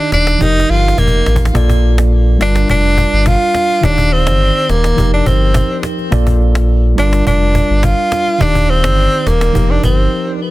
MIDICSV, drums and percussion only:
0, 0, Header, 1, 2, 480
1, 0, Start_track
1, 0, Key_signature, -2, "major"
1, 0, Tempo, 571429
1, 1301, Time_signature, 4, 2, 24, 8
1, 8825, End_track
2, 0, Start_track
2, 0, Title_t, "Cajon"
2, 102, Note_on_c, 9, 36, 72
2, 103, Note_on_c, 9, 38, 92
2, 186, Note_off_c, 9, 36, 0
2, 187, Note_off_c, 9, 38, 0
2, 226, Note_on_c, 9, 38, 96
2, 310, Note_off_c, 9, 38, 0
2, 341, Note_on_c, 9, 38, 61
2, 343, Note_on_c, 9, 36, 89
2, 425, Note_off_c, 9, 38, 0
2, 427, Note_off_c, 9, 36, 0
2, 501, Note_on_c, 9, 38, 68
2, 585, Note_off_c, 9, 38, 0
2, 713, Note_on_c, 9, 38, 33
2, 741, Note_off_c, 9, 38, 0
2, 741, Note_on_c, 9, 38, 69
2, 823, Note_on_c, 9, 36, 90
2, 825, Note_off_c, 9, 38, 0
2, 901, Note_off_c, 9, 36, 0
2, 901, Note_on_c, 9, 36, 73
2, 985, Note_off_c, 9, 36, 0
2, 1061, Note_on_c, 9, 38, 88
2, 1141, Note_on_c, 9, 36, 105
2, 1145, Note_off_c, 9, 38, 0
2, 1186, Note_on_c, 9, 38, 41
2, 1221, Note_off_c, 9, 38, 0
2, 1221, Note_on_c, 9, 38, 96
2, 1225, Note_off_c, 9, 36, 0
2, 1301, Note_on_c, 9, 36, 127
2, 1305, Note_off_c, 9, 38, 0
2, 1385, Note_off_c, 9, 36, 0
2, 1424, Note_on_c, 9, 36, 101
2, 1508, Note_off_c, 9, 36, 0
2, 1665, Note_on_c, 9, 38, 127
2, 1749, Note_off_c, 9, 38, 0
2, 1782, Note_on_c, 9, 38, 48
2, 1866, Note_off_c, 9, 38, 0
2, 2023, Note_on_c, 9, 38, 90
2, 2107, Note_off_c, 9, 38, 0
2, 2146, Note_on_c, 9, 38, 97
2, 2230, Note_off_c, 9, 38, 0
2, 2263, Note_on_c, 9, 36, 95
2, 2347, Note_off_c, 9, 36, 0
2, 2501, Note_on_c, 9, 36, 94
2, 2585, Note_off_c, 9, 36, 0
2, 2736, Note_on_c, 9, 38, 100
2, 2743, Note_on_c, 9, 36, 91
2, 2820, Note_off_c, 9, 38, 0
2, 2827, Note_off_c, 9, 36, 0
2, 2978, Note_on_c, 9, 38, 97
2, 3062, Note_off_c, 9, 38, 0
2, 3105, Note_on_c, 9, 38, 41
2, 3189, Note_off_c, 9, 38, 0
2, 3221, Note_on_c, 9, 36, 127
2, 3305, Note_off_c, 9, 36, 0
2, 3343, Note_on_c, 9, 36, 103
2, 3427, Note_off_c, 9, 36, 0
2, 3585, Note_on_c, 9, 38, 122
2, 3669, Note_off_c, 9, 38, 0
2, 3701, Note_on_c, 9, 38, 49
2, 3785, Note_off_c, 9, 38, 0
2, 3943, Note_on_c, 9, 38, 90
2, 4027, Note_off_c, 9, 38, 0
2, 4067, Note_on_c, 9, 38, 95
2, 4151, Note_off_c, 9, 38, 0
2, 4184, Note_on_c, 9, 36, 98
2, 4268, Note_off_c, 9, 36, 0
2, 4421, Note_on_c, 9, 36, 92
2, 4505, Note_off_c, 9, 36, 0
2, 4553, Note_on_c, 9, 38, 35
2, 4637, Note_off_c, 9, 38, 0
2, 4657, Note_on_c, 9, 38, 101
2, 4663, Note_on_c, 9, 36, 91
2, 4741, Note_off_c, 9, 38, 0
2, 4747, Note_off_c, 9, 36, 0
2, 4899, Note_on_c, 9, 38, 94
2, 4983, Note_off_c, 9, 38, 0
2, 5026, Note_on_c, 9, 38, 43
2, 5110, Note_off_c, 9, 38, 0
2, 5142, Note_on_c, 9, 36, 127
2, 5226, Note_off_c, 9, 36, 0
2, 5264, Note_on_c, 9, 36, 101
2, 5348, Note_off_c, 9, 36, 0
2, 5505, Note_on_c, 9, 38, 126
2, 5589, Note_off_c, 9, 38, 0
2, 5622, Note_on_c, 9, 38, 50
2, 5706, Note_off_c, 9, 38, 0
2, 5864, Note_on_c, 9, 38, 91
2, 5948, Note_off_c, 9, 38, 0
2, 5987, Note_on_c, 9, 38, 98
2, 6071, Note_off_c, 9, 38, 0
2, 6104, Note_on_c, 9, 36, 97
2, 6188, Note_off_c, 9, 36, 0
2, 6342, Note_on_c, 9, 36, 98
2, 6426, Note_off_c, 9, 36, 0
2, 6473, Note_on_c, 9, 38, 35
2, 6557, Note_off_c, 9, 38, 0
2, 6577, Note_on_c, 9, 38, 93
2, 6583, Note_on_c, 9, 36, 93
2, 6661, Note_off_c, 9, 38, 0
2, 6667, Note_off_c, 9, 36, 0
2, 6819, Note_on_c, 9, 38, 99
2, 6903, Note_off_c, 9, 38, 0
2, 6947, Note_on_c, 9, 38, 40
2, 7031, Note_off_c, 9, 38, 0
2, 7062, Note_on_c, 9, 36, 127
2, 7146, Note_off_c, 9, 36, 0
2, 7185, Note_on_c, 9, 36, 104
2, 7269, Note_off_c, 9, 36, 0
2, 7425, Note_on_c, 9, 38, 127
2, 7509, Note_off_c, 9, 38, 0
2, 7783, Note_on_c, 9, 36, 71
2, 7784, Note_on_c, 9, 38, 94
2, 7867, Note_off_c, 9, 36, 0
2, 7868, Note_off_c, 9, 38, 0
2, 7906, Note_on_c, 9, 38, 100
2, 7990, Note_off_c, 9, 38, 0
2, 8023, Note_on_c, 9, 36, 91
2, 8107, Note_off_c, 9, 36, 0
2, 8261, Note_on_c, 9, 36, 94
2, 8345, Note_off_c, 9, 36, 0
2, 8393, Note_on_c, 9, 38, 34
2, 8477, Note_off_c, 9, 38, 0
2, 8825, End_track
0, 0, End_of_file